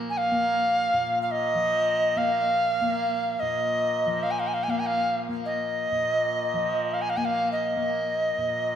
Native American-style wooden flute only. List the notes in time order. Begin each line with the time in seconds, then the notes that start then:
0.10 G#5
0.18 F5
1.22 F5
1.31 D#5
2.18 F5
3.40 D#5
4.23 F5
4.31 G#5
4.39 F5
4.47 G#5
4.54 F5
4.63 G#5
4.70 F5
4.79 G#5
4.86 F5
5.46 D#5
6.94 F5
7.01 G#5
7.10 F5
7.17 G#5
7.25 F5
7.52 D#5